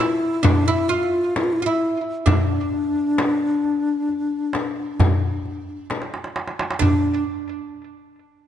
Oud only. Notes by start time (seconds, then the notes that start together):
0.00 E4
0.43 D4
0.68 E4
0.89 F4
1.62 E4 F4
2.26 D4
6.79 D4